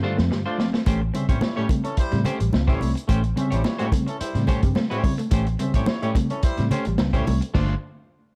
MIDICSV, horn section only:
0, 0, Header, 1, 2, 480
1, 0, Start_track
1, 0, Tempo, 557103
1, 744, Time_signature, 4, 2, 24, 8
1, 7194, End_track
2, 0, Start_track
2, 0, Title_t, "Horn section"
2, 0, Program_c, 0, 61
2, 391, Note_on_c, 0, 57, 83
2, 391, Note_on_c, 0, 65, 87
2, 391, Note_on_c, 0, 74, 95
2, 582, Note_off_c, 0, 74, 0
2, 583, Note_off_c, 0, 57, 0
2, 583, Note_off_c, 0, 65, 0
2, 977, Note_on_c, 0, 72, 77
2, 980, Note_on_c, 0, 61, 74
2, 980, Note_on_c, 0, 76, 90
2, 1081, Note_off_c, 0, 72, 0
2, 1083, Note_off_c, 0, 61, 0
2, 1083, Note_off_c, 0, 76, 0
2, 1097, Note_on_c, 0, 72, 98
2, 1098, Note_on_c, 0, 64, 83
2, 1099, Note_on_c, 0, 55, 88
2, 1193, Note_off_c, 0, 64, 0
2, 1193, Note_off_c, 0, 72, 0
2, 1194, Note_off_c, 0, 55, 0
2, 1207, Note_on_c, 0, 73, 85
2, 1212, Note_on_c, 0, 55, 78
2, 1212, Note_on_c, 0, 64, 73
2, 1315, Note_off_c, 0, 73, 0
2, 1318, Note_off_c, 0, 55, 0
2, 1318, Note_off_c, 0, 64, 0
2, 1336, Note_on_c, 0, 64, 72
2, 1340, Note_on_c, 0, 73, 83
2, 1342, Note_on_c, 0, 55, 78
2, 1408, Note_off_c, 0, 64, 0
2, 1410, Note_off_c, 0, 73, 0
2, 1412, Note_off_c, 0, 55, 0
2, 1578, Note_on_c, 0, 69, 107
2, 1582, Note_on_c, 0, 52, 92
2, 1582, Note_on_c, 0, 61, 96
2, 1673, Note_off_c, 0, 69, 0
2, 1675, Note_off_c, 0, 52, 0
2, 1675, Note_off_c, 0, 61, 0
2, 1696, Note_on_c, 0, 64, 96
2, 1697, Note_on_c, 0, 55, 104
2, 1700, Note_on_c, 0, 72, 120
2, 1891, Note_off_c, 0, 55, 0
2, 1891, Note_off_c, 0, 64, 0
2, 1893, Note_off_c, 0, 72, 0
2, 2304, Note_on_c, 0, 55, 81
2, 2307, Note_on_c, 0, 64, 96
2, 2307, Note_on_c, 0, 73, 91
2, 2498, Note_off_c, 0, 55, 0
2, 2500, Note_off_c, 0, 64, 0
2, 2500, Note_off_c, 0, 73, 0
2, 2902, Note_on_c, 0, 72, 86
2, 2905, Note_on_c, 0, 61, 86
2, 2905, Note_on_c, 0, 76, 96
2, 3004, Note_off_c, 0, 72, 0
2, 3006, Note_off_c, 0, 61, 0
2, 3006, Note_off_c, 0, 76, 0
2, 3029, Note_on_c, 0, 72, 102
2, 3031, Note_on_c, 0, 55, 86
2, 3032, Note_on_c, 0, 64, 93
2, 3119, Note_off_c, 0, 72, 0
2, 3120, Note_off_c, 0, 55, 0
2, 3121, Note_off_c, 0, 64, 0
2, 3139, Note_on_c, 0, 64, 82
2, 3141, Note_on_c, 0, 55, 77
2, 3145, Note_on_c, 0, 73, 76
2, 3242, Note_off_c, 0, 64, 0
2, 3243, Note_off_c, 0, 55, 0
2, 3245, Note_off_c, 0, 73, 0
2, 3262, Note_on_c, 0, 73, 89
2, 3264, Note_on_c, 0, 55, 86
2, 3265, Note_on_c, 0, 64, 70
2, 3332, Note_off_c, 0, 73, 0
2, 3333, Note_off_c, 0, 55, 0
2, 3334, Note_off_c, 0, 64, 0
2, 3502, Note_on_c, 0, 52, 101
2, 3503, Note_on_c, 0, 61, 94
2, 3504, Note_on_c, 0, 69, 109
2, 3595, Note_off_c, 0, 52, 0
2, 3595, Note_off_c, 0, 61, 0
2, 3596, Note_off_c, 0, 69, 0
2, 3616, Note_on_c, 0, 64, 106
2, 3616, Note_on_c, 0, 72, 111
2, 3617, Note_on_c, 0, 55, 93
2, 3810, Note_off_c, 0, 64, 0
2, 3810, Note_off_c, 0, 72, 0
2, 3811, Note_off_c, 0, 55, 0
2, 4214, Note_on_c, 0, 55, 86
2, 4214, Note_on_c, 0, 64, 79
2, 4216, Note_on_c, 0, 73, 97
2, 4412, Note_off_c, 0, 55, 0
2, 4412, Note_off_c, 0, 64, 0
2, 4413, Note_off_c, 0, 73, 0
2, 4818, Note_on_c, 0, 61, 76
2, 4818, Note_on_c, 0, 76, 88
2, 4819, Note_on_c, 0, 72, 80
2, 4921, Note_off_c, 0, 61, 0
2, 4921, Note_off_c, 0, 76, 0
2, 4922, Note_off_c, 0, 72, 0
2, 4943, Note_on_c, 0, 72, 97
2, 4946, Note_on_c, 0, 55, 83
2, 4946, Note_on_c, 0, 64, 80
2, 5036, Note_off_c, 0, 72, 0
2, 5037, Note_off_c, 0, 55, 0
2, 5037, Note_off_c, 0, 64, 0
2, 5054, Note_on_c, 0, 55, 81
2, 5055, Note_on_c, 0, 64, 71
2, 5058, Note_on_c, 0, 73, 91
2, 5159, Note_off_c, 0, 55, 0
2, 5159, Note_off_c, 0, 64, 0
2, 5161, Note_off_c, 0, 73, 0
2, 5186, Note_on_c, 0, 73, 78
2, 5188, Note_on_c, 0, 64, 74
2, 5190, Note_on_c, 0, 55, 80
2, 5255, Note_off_c, 0, 73, 0
2, 5256, Note_off_c, 0, 64, 0
2, 5257, Note_off_c, 0, 55, 0
2, 5423, Note_on_c, 0, 52, 101
2, 5425, Note_on_c, 0, 69, 103
2, 5426, Note_on_c, 0, 61, 96
2, 5515, Note_off_c, 0, 52, 0
2, 5516, Note_off_c, 0, 69, 0
2, 5517, Note_off_c, 0, 61, 0
2, 5540, Note_on_c, 0, 72, 125
2, 5544, Note_on_c, 0, 64, 106
2, 5546, Note_on_c, 0, 55, 104
2, 5732, Note_off_c, 0, 72, 0
2, 5735, Note_off_c, 0, 64, 0
2, 5736, Note_off_c, 0, 55, 0
2, 6144, Note_on_c, 0, 64, 81
2, 6144, Note_on_c, 0, 73, 103
2, 6146, Note_on_c, 0, 55, 89
2, 6338, Note_off_c, 0, 64, 0
2, 6338, Note_off_c, 0, 73, 0
2, 6339, Note_off_c, 0, 55, 0
2, 7194, End_track
0, 0, End_of_file